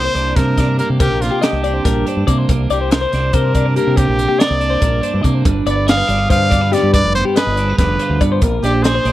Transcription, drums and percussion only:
0.16 closed hi-hat
0.37 kick, snare, closed hi-hat
0.58 kick, snare, closed hi-hat
0.79 closed hi-hat
1.00 kick, closed hi-hat
1.22 snare, closed hi-hat
1.42 snare, closed hi-hat
1.64 closed hi-hat
1.85 kick, snare, closed hi-hat
2.07 closed hi-hat
2.28 kick, closed hi-hat
2.49 kick, closed hi-hat
2.70 closed hi-hat
2.91 snare, closed hi-hat
3.13 snare, closed hi-hat
3.33 kick, closed hi-hat
3.55 kick, closed hi-hat
3.76 closed hi-hat
3.97 kick, closed hi-hat
4.19 closed hi-hat
4.40 snare, closed hi-hat
4.61 closed hi-hat
4.82 kick, closed hi-hat
5.03 closed hi-hat
5.24 kick, closed hi-hat
5.45 kick, closed hi-hat
5.67 closed hi-hat
5.88 snare, closed hi-hat
6.09 closed hi-hat
6.30 kick, closed hi-hat
6.51 kick, closed hi-hat
6.73 snare, closed hi-hat
6.94 kick, closed hi-hat
7.15 closed hi-hat
7.36 snare, closed hi-hat
7.57 closed hi-hat
7.78 kick, snare, closed hi-hat
7.99 closed hi-hat
8.21 kick, closed hi-hat
8.42 kick, closed hi-hat
8.63 snare, closed hi-hat
8.84 snare, closed hi-hat
9.05 closed hi-hat

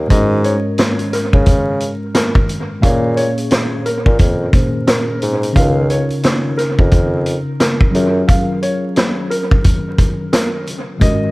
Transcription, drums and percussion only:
0.10 kick, closed hi-hat
0.44 closed hi-hat
0.78 snare, closed hi-hat
0.99 closed hi-hat
1.13 snare, closed hi-hat
1.33 kick
1.46 kick, closed hi-hat
1.80 closed hi-hat
2.15 snare, closed hi-hat
2.35 kick
2.49 closed hi-hat
2.83 kick, closed hi-hat
3.17 closed hi-hat
3.38 closed hi-hat
3.51 snare, closed hi-hat
3.86 closed hi-hat
4.06 kick
4.19 kick, closed hi-hat
4.53 kick, closed hi-hat
4.87 snare, closed hi-hat
5.22 closed hi-hat
5.43 closed hi-hat
5.56 kick, closed hi-hat
5.90 closed hi-hat
6.10 closed hi-hat
6.23 snare, closed hi-hat
6.58 snare, closed hi-hat
6.79 kick
6.91 kick, closed hi-hat
7.26 closed hi-hat
7.60 snare, closed hi-hat
7.81 kick
7.95 closed hi-hat
8.28 kick, closed hi-hat
8.63 closed hi-hat
8.96 snare, closed hi-hat
9.31 closed hi-hat
9.51 kick
9.64 kick, closed hi-hat
9.98 kick, closed hi-hat
10.33 snare, closed hi-hat
10.67 closed hi-hat
11.01 kick, closed hi-hat

